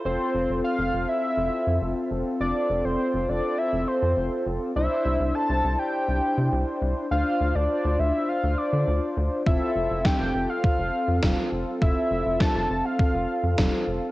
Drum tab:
SD |--------|--------|--------|--------|
BD |--------|--------|--------|--------|

SD |--o---o-|--o---o-|
BD |o-o-o-o-|o-o-o-o-|